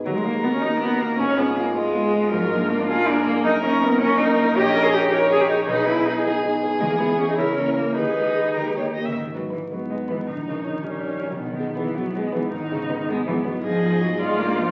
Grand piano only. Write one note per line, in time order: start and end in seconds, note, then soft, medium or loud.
0.06 0.24 D#2 medium
0.24 0.42 A#3 soft
0.24 0.41 D#4 soft
0.24 0.42 F#4 medium
0.44 0.61 A#3 soft
0.44 0.61 D#4 soft
0.44 0.61 F#4 medium
0.63 0.80 A#3 soft
0.63 0.80 D#4 soft
0.63 0.81 F#4 medium
0.82 0.99 A#3 soft
0.82 0.99 D#4 soft
0.82 0.99 F#4 medium
1.01 1.18 A#3 soft
1.01 1.18 D#4 soft
1.01 1.18 F#4 soft
1.19 1.37 G#2 medium
1.37 1.55 B3 medium
1.37 1.55 F4 medium
1.37 1.56 G#4 medium
1.57 1.74 B3 medium
1.57 1.74 F4 medium
1.57 1.74 G#4 medium
1.76 1.93 B3 medium
1.76 1.93 F4 soft
1.76 1.93 G#4 medium
1.95 2.12 B3 soft
1.95 2.12 F4 medium
2.14 2.31 B3 soft
2.14 2.31 F4 soft
2.14 2.31 G#4 medium
2.33 2.51 G#2 medium
2.52 2.68 A#3 medium
2.52 2.69 D4 medium
2.52 2.69 A#4 medium
2.70 2.87 A#3 medium
2.70 2.87 D4 medium
2.70 2.87 A#4 medium
2.89 3.06 A#3 soft
2.89 3.06 D4 medium
2.89 3.06 A#4 medium
3.07 3.24 A#3 medium
3.07 3.25 D4 medium
3.07 3.25 A#4 medium
3.26 3.43 A#3 medium
3.26 3.43 D4 medium
3.26 3.44 A#4 medium
3.44 3.63 F#2 medium
3.63 3.80 A#3 medium
3.63 3.80 D#4 medium
3.63 3.80 A#4 medium
3.82 3.99 A#3 medium
3.82 3.99 D#4 medium
3.82 3.99 A#4 medium
4.02 4.18 A#3 medium
4.02 4.19 D#4 medium
4.02 4.19 A#4 medium
4.20 4.37 A#3 medium
4.20 4.37 D#4 medium
4.20 4.37 A#4 medium
4.39 4.55 A#3 medium
4.39 4.56 D#4 medium
4.39 4.56 A#4 medium
4.58 4.75 A#1 medium
4.75 4.92 C#4 medium
4.75 4.92 D#4 medium
4.75 4.92 A#4 medium
4.94 5.11 C#4 medium
4.94 5.11 D#4 medium
4.94 5.11 A#4 medium
5.12 5.29 C#4 medium
5.12 5.29 D#4 medium
5.12 5.30 A#4 medium
5.31 5.47 C#4 medium
5.31 5.48 D#4 medium
5.31 5.48 A#4 medium
5.49 5.66 C#4 medium
5.49 5.67 D#4 medium
5.49 5.67 A#4 medium
5.67 5.86 B1 medium
5.87 6.04 B3 medium
5.87 6.04 D#4 medium
5.87 6.04 G#4 medium
6.06 6.23 B3 medium
6.06 6.23 D#4 medium
6.06 6.23 G#4 medium
6.25 6.42 B3 medium
6.25 6.42 D#4 medium
6.25 6.42 G#4 medium
6.44 6.61 B3 soft
6.44 6.61 D#4 medium
6.44 6.61 G#4 medium
6.63 6.80 B3 soft
6.63 6.80 D#4 soft
6.63 6.80 G#4 medium
6.82 7.00 E2 medium
7.00 7.17 B3 medium
7.00 7.17 E4 medium
7.00 7.17 G#4 medium
7.19 7.36 B3 soft
7.19 7.36 E4 soft
7.19 7.37 G#4 soft
7.39 7.57 C#2 medium
7.58 7.75 A#3 soft
7.58 7.75 E4 soft
7.58 7.76 A#4 soft
7.78 7.96 A#3 soft
7.78 7.96 E4 soft
7.78 7.96 A#4 soft
7.98 8.16 D#2 medium
8.17 8.34 G#3 soft
8.17 8.35 G#4 soft
8.17 8.35 B4 soft
8.37 8.54 G#3 soft
8.37 8.54 G#4 soft
8.37 8.54 B4 soft
8.57 8.75 D#2 medium
8.75 8.92 A#3 soft
8.75 8.93 G4 soft
8.75 8.93 A#4 soft
8.95 9.12 A#3 soft
8.95 9.12 G4 soft
8.95 9.13 A#4 soft
9.14 9.32 G#2 soft
9.34 9.51 G#3 soft
9.34 9.51 D#4 soft
9.34 9.51 B4 soft
9.53 9.69 G#3 soft
9.53 9.70 D#4 soft
9.53 9.70 B4 soft
9.71 9.88 G#3 soft
9.71 9.89 D#4 soft
9.71 9.89 B4 soft
9.90 10.07 G#3 soft
9.90 10.07 D#4 soft
9.90 10.07 B4 soft
10.10 10.26 G#3 soft
10.10 10.26 D#4 soft
10.10 10.26 B4 soft
10.28 10.46 A#1 soft
10.47 10.64 C#4 soft
10.47 10.64 D#4 soft
10.47 10.64 A#4 soft
10.65 10.82 C#4 soft
10.65 10.82 D#4 soft
10.65 10.82 A#4 soft
10.84 11.01 C#4 soft
10.84 11.01 D#4 soft
10.84 11.01 A#4 soft
11.02 11.19 C#4 soft
11.02 11.20 D#4 soft
11.02 11.20 A#4 soft
11.22 11.39 C#4 soft
11.22 11.39 D#4 soft
11.22 11.39 A#4 soft
11.39 11.58 B1 soft
11.58 11.75 B3 soft
11.58 11.76 D#4 soft
11.58 11.76 G#4 soft
11.78 11.95 B3 soft
11.78 11.95 D#4 soft
11.78 11.95 G#4 soft
11.97 12.14 B3 soft
11.97 12.14 D#4 soft
11.97 12.14 G#4 soft
12.16 12.33 B3 soft
12.16 12.33 D#4 soft
12.16 12.33 G#4 soft
12.35 12.51 B3 soft
12.35 12.52 D#4 soft
12.35 12.52 G#4 soft
12.53 12.71 G#2 medium
12.72 12.88 B3 soft
12.72 12.88 D#4 soft
12.72 12.89 G#4 soft
12.89 13.06 B3 soft
12.89 13.07 D#4 soft
12.89 13.07 G#4 soft
13.09 13.25 B3 soft
13.09 13.25 D#4 soft
13.09 13.26 G#4 soft
13.27 13.44 B3 soft
13.27 13.44 D#4 soft
13.27 13.44 G#4 soft
13.45 13.62 B3 soft
13.45 13.63 D#4 soft
13.45 13.63 G#4 soft
13.64 13.82 G#2 soft
13.83 13.99 B3 soft
13.83 14.00 D#4 soft
13.83 14.00 F4 medium
14.02 14.18 B3 soft
14.02 14.19 D#4 soft
14.02 14.19 F4 soft
14.21 14.39 G#2 medium
14.40 14.56 A#3 soft
14.40 14.57 D4 soft
14.40 14.57 F4 soft
14.58 14.71 A#3 soft
14.58 14.71 D4 soft
14.58 14.71 F4 soft